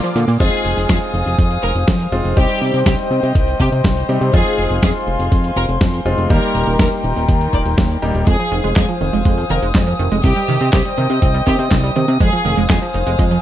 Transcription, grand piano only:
Already playing: F3 A#3 D4 F4
0.40 G#3 C4 D#4 F4
2.12 G#3 C4 D#4 F4
2.37 G3 C4 D#4 G4
4.09 G3 C4 D#4 G4
4.34 G#3 C4 D#4 F4
6.06 G#3 C4 D#4 F4
6.30 G3 A#3 D#4 G4
8.02 G3 A#3 D#4 G4

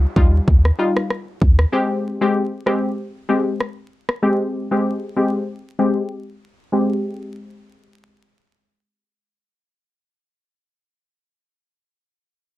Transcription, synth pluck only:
0.16 G3 D#4 F4
0.79 G3 D#4 F4
1.72 G#3 C4 G4
2.21 G#3 C4 G4
2.66 G#3 C4 G4
3.29 G#3 C4 G4
4.22 G#3 C4 G4
4.71 G#3 C4 G4
5.16 G#3 C4 G4
5.79 G#3 C4 G4
6.72 G#3 C4 G4

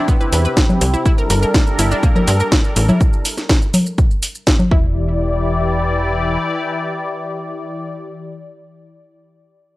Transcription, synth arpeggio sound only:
0.08 B3
0.21 B4
0.32 B4
0.45 B4
0.94 E4
1.06 E4
1.18 A#4
1.30 A#4
1.43 A#4
1.54 D4
1.79 E4
1.91 D4
2.03 A#3
2.16 A#4
2.28 A#4
2.40 A#4
2.89 E4
4.72 E4

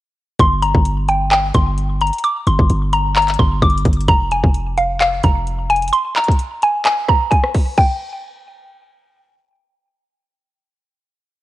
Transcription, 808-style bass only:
0.39 G1
0.74 G1
1.55 G1
2.47 G1
2.59 G1
2.70 G1
3.39 G1
3.62 G1
3.85 G1
4.08 F1
4.44 F1
5.24 F1

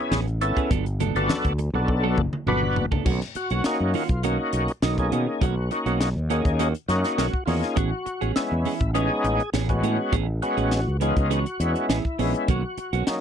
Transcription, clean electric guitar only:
0.12 E3 B3 C#4 G#4
0.27 muted clean electric guitar stroke
0.41 muted clean electric guitar stroke
0.57 B3 C#4 G#4
0.70 F#3 B3 D4 A4
1.00 F#3 B3 D4 A4
1.15 B3 D4 A4
1.45 muted clean electric guitar stroke
1.59 muted clean electric guitar stroke
1.74 muted clean electric guitar stroke
1.89 muted clean electric guitar stroke
2.04 F#3 B3 D4 A4
2.18 muted clean electric guitar stroke
2.47 F#3 B3 D4 A4
2.63 muted clean electric guitar stroke
2.76 muted clean electric guitar stroke
2.92 B3 D4 A4
3.06 D#3 A#3 C#4 F#4
3.36 muted clean electric guitar stroke
3.51 A#3 C#4 F#4
3.65 muted clean electric guitar stroke
3.94 D#3 A#3 C#4 F#4
4.23 D#3 A#3 C#4 F#4
4.39 muted clean electric guitar stroke
4.53 muted clean electric guitar stroke
4.83 D#3 A#3 C#4 F#4
4.98 muted clean electric guitar stroke
5.12 D#3 A#3 C#4 F#4
5.27 muted clean electric guitar stroke
5.41 D#3 A#3 C#4 F#4
5.56 muted clean electric guitar stroke
5.71 muted clean electric guitar stroke
5.86 A#3 C#4 F#4
6.00 muted clean electric guitar stroke
6.30 D#3 A#3 C#4 F#4
6.45 muted clean electric guitar stroke
6.59 D#3 A#3 C#4 F#4
6.88 muted clean electric guitar stroke
7.18 D#3 A#3 C#4 F#4
7.34 muted clean electric guitar stroke
7.47 D#3 A#3 C#4 F#4
7.62 muted clean electric guitar stroke
7.76 E3 B3 C#4 G#4
7.91 muted clean electric guitar stroke
8.06 muted clean electric guitar stroke
8.21 B3 C#4 G#4
8.36 muted clean electric guitar stroke
8.65 E3 B3 C#4 G#4
8.80 muted clean electric guitar stroke
8.94 E3 B3 C#4 G#4
9.10 muted clean electric guitar stroke
9.25 muted clean electric guitar stroke
9.53 E3 B3 C#4 G#4
9.69 muted clean electric guitar stroke
9.83 E3 B3 C#4 G#4
9.98 muted clean electric guitar stroke
10.12 E3 B3 C#4 G#4
10.28 muted clean electric guitar stroke
10.42 muted clean electric guitar stroke
10.57 B3 C#4 G#4
10.71 muted clean electric guitar stroke
11.00 E3 B3 C#4 G#4
11.16 muted clean electric guitar stroke
11.30 E3 B3 C#4 G#4
11.46 muted clean electric guitar stroke
11.60 muted clean electric guitar stroke
11.89 E3 B3 C#4 G#4
12.05 muted clean electric guitar stroke
12.19 E3 B3 C#4 G#4
12.35 muted clean electric guitar stroke
12.49 D#3 A#3 C#4 F#4
12.64 muted clean electric guitar stroke
12.78 muted clean electric guitar stroke
12.93 A#3 C#4 F#4
13.07 muted clean electric guitar stroke

